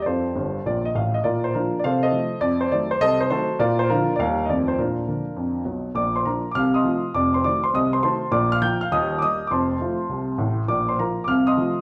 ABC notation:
X:1
M:4/4
L:1/16
Q:"Swing" 1/4=203
K:Bb
V:1 name="Grand piano"
[FAc]8 d2 e2 f2 e2 | [FBd]2 c2 [DFB]3 d [Acf]2 [Ace]6 | d2 c2 d2 c2 [Ace]2 c2 [_GAc]4 | [FBd]2 c2 [DFB]3 d [Bf]3 e d2 c2 |
[DFB]12 z4 | [dd']2 [cc']2 [Bb]3 d' [ff']2 [ec'e']6 | [dd']2 [cc']2 [dd']2 [cc']2 [ee']2 [cc']2 [cac']4 | [dd']2 [ff']2 [gg']2 [ff']2 [ee']3 d' [ee']3 d' |
[cac']12- [cac']2 z2 | [dd']2 [cc']2 [Bb]3 d' [ff']2 [ec'e']6 |]
V:2 name="Grand piano" clef=bass
F,,4 [G,,,G,,]4 [B,,,B,,]4 [A,,,A,,]4 | B,,4 [F,B,]4 C,4 [F,A,]4 | F,,4 [E,_G,A,]4 C,,4 [E,G,A,]4 | B,,4 [D,F,B,]4 [E,,E,G,B,]4 [F,,E,F,A,]4 |
B,,4 [D,F,B,]4 F,,4 [_C,,_C,]4 | [B,,,B,,]4 [F,B,D]4 [C,,C,]4 [F,A,F]4 | [F,,,F,,]4 [E,A,_G]4 [C,,C,]4 [E,A,G]4 | [B,,,B,,]4 [F,B,B]4 [E,,,E,,]4 [G,B,B]4 |
[F,,,F,,]4 [F,A,F]4 [C,,C,]4 [A,,,A,,]4 | [B,,,B,,]4 [F,B,F]4 [C,,C,]4 [F,A,F]4 |]